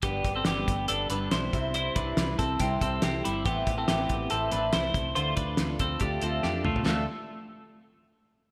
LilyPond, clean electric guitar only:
\new Staff \with { instrumentName = "Clean electric guitar" } { \time 4/4 \key d \dorian \tempo 4 = 141 <b g'>8. <c' a'>16 <b g'>4 <d' a'>8 <d' b'>8 <e' c''>4 | <e' c''>8 <d' b'>4 <c' a'>8 <c' g'>8 <c' a'>8 <c' g'>8 <g e'>8 | <b g'>8. <c' a'>16 <b g'>4 <c' a'>8 <d' b'>8 <e' c''>4 | <f' c''>8 <d' b'>4 <c' a'>8 <d' g'>8 <c' a'>8 <d' g'>8 <a f'>8 |
a8 r2. r8 | }